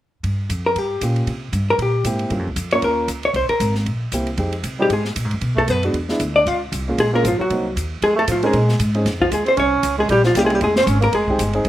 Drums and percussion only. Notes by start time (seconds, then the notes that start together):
0.24 kick, ride
0.50 kick, hi-hat pedal, ride
0.76 kick, ride
1.01 kick, hi-hat pedal, ride
1.16 ride
1.27 kick, ride
1.53 kick, hi-hat pedal, ride
1.79 kick, ride
2.04 kick, hi-hat pedal, ride
2.19 ride
2.30 kick, ride
2.56 kick, hi-hat pedal, ride
2.71 ride
2.82 kick, ride
3.08 kick, hi-hat pedal, ride
3.23 ride
3.34 kick, ride
3.49 ride
3.60 kick, hi-hat pedal, ride
3.75 snare
3.86 kick, ride
4.12 kick, hi-hat pedal, ride
4.27 ride
4.37 kick, ride
4.52 ride
4.64 kick, hi-hat pedal, ride
4.90 kick, ride
5.05 snare
5.16 kick, hi-hat pedal, ride
5.31 ride
5.41 kick, ride
5.57 kick
5.68 kick, hi-hat pedal, ride
5.83 ride
5.94 kick, ride
6.09 snare
6.20 kick, hi-hat pedal, ride
6.46 kick, ride
6.72 kick, hi-hat pedal, ride
6.98 kick, ride
7.24 kick, hi-hat pedal, ride
7.50 kick, ride
7.76 kick, hi-hat pedal, ride
8.02 kick, ride
8.28 kick, hi-hat pedal, ride
8.43 ride
8.53 kick, ride
8.69 snare
8.79 kick, hi-hat pedal, ride
8.94 ride
9.05 kick, snare, ride
9.20 kick
9.31 kick, hi-hat pedal, ride
9.46 ride
9.57 kick, ride
9.83 kick, hi-hat pedal, ride
10.09 kick, ride
10.24 snare
10.35 kick, hi-hat pedal, ride
10.50 ride
10.61 kick, ride
10.76 snare
10.87 kick, hi-hat pedal, ride
11.02 ride
11.13 kick, ride
11.28 kick
11.39 kick, hi-hat pedal, ride
11.53 ride
11.65 kick, ride